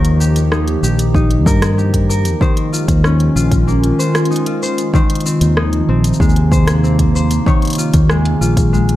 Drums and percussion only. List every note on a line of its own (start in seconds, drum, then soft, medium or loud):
0.05 closed hi-hat soft
0.21 shaker medium
0.36 closed hi-hat soft
0.36 shaker soft
0.52 cross-stick medium
0.52 shaker soft
0.68 closed hi-hat soft
0.84 shaker medium
0.99 closed hi-hat medium
0.99 shaker soft
1.15 kick loud
1.15 shaker soft
1.31 closed hi-hat soft
1.46 kick loud
1.46 shaker medium
1.62 cross-stick medium
1.62 closed hi-hat soft
1.62 shaker soft
1.79 shaker soft
1.94 kick medium
1.94 closed hi-hat soft
2.11 shaker medium
2.25 closed hi-hat soft
2.25 shaker soft
2.41 kick loud
2.41 shaker soft
2.57 closed hi-hat soft
2.74 shaker medium
2.88 kick loud
2.88 closed hi-hat medium
2.88 shaker soft
3.04 cross-stick medium
3.04 shaker soft
3.20 closed hi-hat soft
3.37 shaker medium
3.51 kick loud
3.51 closed hi-hat medium
3.51 shaker soft
3.68 shaker soft
3.84 closed hi-hat soft
4.00 shaker medium
4.15 cross-stick medium
4.15 closed hi-hat soft
4.15 shaker soft
4.25 closed hi-hat soft
4.32 shaker soft
4.36 closed hi-hat soft
4.46 closed hi-hat soft
4.63 shaker medium
4.78 closed hi-hat soft
4.78 shaker soft
4.94 kick loud
4.94 shaker soft
5.10 closed hi-hat soft
5.15 closed hi-hat soft
5.21 closed hi-hat soft
5.26 shaker medium
5.41 closed hi-hat medium
5.41 shaker soft
5.57 cross-stick medium
5.73 closed hi-hat soft
6.04 closed hi-hat medium
6.04 shaker soft
6.14 shaker soft
6.20 kick loud
6.20 shaker soft
6.29 shaker soft
6.36 closed hi-hat soft
6.52 kick loud
6.52 shaker medium
6.68 cross-stick medium
6.68 closed hi-hat medium
6.68 shaker soft
6.84 shaker soft
6.99 kick medium
6.99 closed hi-hat soft
7.16 shaker medium
7.31 closed hi-hat soft
7.31 shaker soft
7.46 kick loud
7.46 shaker soft
7.62 closed hi-hat soft
7.65 closed hi-hat soft
7.67 closed hi-hat soft
7.70 closed hi-hat soft
7.73 closed hi-hat soft
7.75 closed hi-hat soft
7.75 shaker medium
7.94 kick medium
7.94 closed hi-hat medium
7.94 shaker soft
8.10 cross-stick medium
8.10 shaker soft
8.25 closed hi-hat soft
8.42 shaker medium
8.57 kick medium
8.57 closed hi-hat medium
8.57 shaker soft
8.74 shaker soft
8.89 closed hi-hat soft